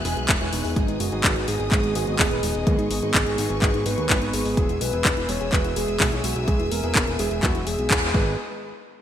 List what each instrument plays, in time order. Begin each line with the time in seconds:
Already playing: string section B3 E5 G#5 F#6
0.05 analog synth bass E1, synth arpeggio sound G#3, grand piano G#3 B3 E4 G#4, open hi-hat
0.17 analog synth bass B1, synth arpeggio sound G#4, closed hi-hat
0.29 analog synth bass E1, synth arpeggio sound G#3, kick, clap, closed hi-hat
0.41 analog synth bass E1, grand piano G#3 B3 E4 C#5, synth arpeggio sound E4, closed hi-hat
0.52 analog synth bass E1, synth arpeggio sound G#3, soft synth lead D#4, open hi-hat
0.64 analog synth bass E1, synth arpeggio sound G#4, open hi-hat
0.76 analog synth bass G#1, grand piano G#3 B3 D#4 G#4, synth arpeggio sound G#3, string section D#5 D#6, kick, closed hi-hat
0.88 analog synth bass G#1, synth arpeggio sound D#4, closed hi-hat
1.00 analog synth bass F#1, synth arpeggio sound G#3, soft synth lead F#4, open hi-hat
1.12 analog synth bass G#1, grand piano G#3 B3 D#4 G#4, synth arpeggio sound G#4, closed hi-hat
1.24 analog synth bass G#1, synth arpeggio sound G#4, kick, clap, closed hi-hat
1.36 analog synth bass G#1, synth arpeggio sound D#4, closed hi-hat
1.48 analog synth bass G#1, grand piano G#3 B3 D#4 G#4, synth arpeggio sound G#3, soft synth lead G#4, open hi-hat
1.60 analog synth bass G#1, synth arpeggio sound G#4, closed hi-hat
1.72 analog synth bass G#1, grand piano G#3 B3 D#4 F#4, synth arpeggio sound G#3, kick, clap, closed hi-hat
1.83 analog synth bass G#1, synth arpeggio sound D#4, closed hi-hat
1.95 analog synth bass G#1, grand piano G#3 B3 D#4 G#4, synth arpeggio sound G#3, soft synth lead F#4, open hi-hat
2.07 analog synth bass G#1, synth arpeggio sound G#4, closed hi-hat
2.19 analog synth bass D#1, synth arpeggio sound G#3, soft synth lead G#4, kick, clap, open hi-hat
2.31 analog synth bass D#1, grand piano G#3 B3 D#4 B4, synth arpeggio sound D#4, closed hi-hat
2.43 analog synth bass D#1, synth arpeggio sound G#3, open hi-hat
2.55 analog synth bass D#1, synth arpeggio sound G#4, closed hi-hat
2.67 analog synth bass D#2, grand piano G#3 B3 D#4 G#4, synth arpeggio sound G#3, soft synth lead G#4, string section C#6, kick, closed hi-hat
2.79 analog synth bass G#1, synth arpeggio sound D#4, closed hi-hat
2.90 analog synth bass G#1, synth arpeggio sound G#3, open hi-hat
3.02 analog synth bass G#1, grand piano G#3 B3 D#4 G#4, synth arpeggio sound G#4
3.14 analog synth bass G#1, synth arpeggio sound G#4, soft synth lead G#4, kick, clap, closed hi-hat
3.26 analog synth bass G#1, synth arpeggio sound D#4, closed hi-hat
3.38 analog synth bass G#1, grand piano G#3 B3 D#4 G#4, synth arpeggio sound G#3, open hi-hat
3.50 analog synth bass G#1, synth arpeggio sound G#4, closed hi-hat
3.62 analog synth bass G#1, grand piano G#3 B3 D#4 F#4, synth arpeggio sound G#3, soft synth lead G#4, kick, clap, closed hi-hat
3.74 analog synth bass G#1, synth arpeggio sound D#4, closed hi-hat
3.86 analog synth bass G#1, synth arpeggio sound G#3, grand piano G#3 B3 D#4 G#4, soft synth lead B4, open hi-hat
3.98 analog synth bass D#2, synth arpeggio sound G#4, closed hi-hat
4.10 analog synth bass G#1, synth arpeggio sound G#3, kick, clap, closed hi-hat
4.21 analog synth bass G#1, grand piano G#3 B3 D#4 B4, synth arpeggio sound D#4, closed hi-hat
4.33 analog synth bass G#1, synth arpeggio sound G#3, soft synth lead G#4, open hi-hat
4.45 analog synth bass G#1, synth arpeggio sound G#4, open hi-hat
4.57 analog synth bass E1, grand piano G#3 B3 E4 G#4, synth arpeggio sound G#3, string section E5 G#5 E6, kick, closed hi-hat
4.69 analog synth bass E1, synth arpeggio sound E4, closed hi-hat
4.81 analog synth bass B1, synth arpeggio sound G#3, soft synth lead B4, open hi-hat
4.93 analog synth bass E1, grand piano G#3 B3 E4 G#4, synth arpeggio sound G#4, closed hi-hat
5.05 analog synth bass E1, synth arpeggio sound G#4, kick, clap, closed hi-hat
5.17 analog synth bass E1, synth arpeggio sound E4, closed hi-hat
5.29 analog synth bass E1, grand piano G#3 B3 E4 G#4, synth arpeggio sound G#3, soft synth lead C#5, open hi-hat
5.41 analog synth bass E1, synth arpeggio sound G#4, closed hi-hat
5.53 analog synth bass E1, grand piano G#3 B3 E4 F#4, synth arpeggio sound G#3, soft synth lead B4, kick, clap, closed hi-hat
5.64 analog synth bass E1, synth arpeggio sound E4, closed hi-hat
5.76 analog synth bass E1, synth arpeggio sound G#3, grand piano G#3 B3 E4 G#4, soft synth lead G#4, open hi-hat
5.88 analog synth bass E1, synth arpeggio sound G#4, closed hi-hat
6.00 analog synth bass B1, synth arpeggio sound G#3, kick, clap, open hi-hat
6.12 analog synth bass B1, grand piano G#3 B3 E4 C#5, synth arpeggio sound E4, closed hi-hat
6.24 analog synth bass B1, synth arpeggio sound G#3, soft synth lead F#4, open hi-hat
6.36 analog synth bass B1, synth arpeggio sound G#4, closed hi-hat
6.48 analog synth bass B1, grand piano G#3 B3 E4 G#4, synth arpeggio sound G#3, soft synth lead G#4, kick, closed hi-hat
6.60 analog synth bass E1, synth arpeggio sound E4, closed hi-hat
6.71 analog synth bass E1, synth arpeggio sound G#3, soft synth lead A#4, open hi-hat
6.83 analog synth bass E1, grand piano G#3 B3 E4 G#4, synth arpeggio sound G#4, closed hi-hat
6.95 analog synth bass E1, synth arpeggio sound G#4, kick, clap, closed hi-hat
7.07 analog synth bass E1, synth arpeggio sound E4, closed hi-hat
7.19 analog synth bass E1, synth arpeggio sound G#3, grand piano G#3 B3 E4 G#4, soft synth lead G#4, open hi-hat
7.31 analog synth bass E1, synth arpeggio sound G#4, closed hi-hat
7.43 analog synth bass E1, synth arpeggio sound G#3, grand piano G#3 B3 E4 F#4, soft synth lead F#4, kick, clap, closed hi-hat
7.55 analog synth bass E1, synth arpeggio sound E4, closed hi-hat
7.67 analog synth bass E1, synth arpeggio sound G#3, soft synth lead G#4, open hi-hat
7.79 analog synth bass B1, synth arpeggio sound G#4, closed hi-hat
7.90 analog synth bass E1, synth arpeggio sound G#3, grand piano G#3 B3 E4 G#4, kick, clap, closed hi-hat
8.02 analog synth bass E1, synth arpeggio sound E4, closed hi-hat
8.14 analog synth bass G#1, string section G#3 G#4 B4 D#5 D#6, synth arpeggio sound G#3, grand piano G#3 B3 D#4 G#4, soft synth lead B4, kick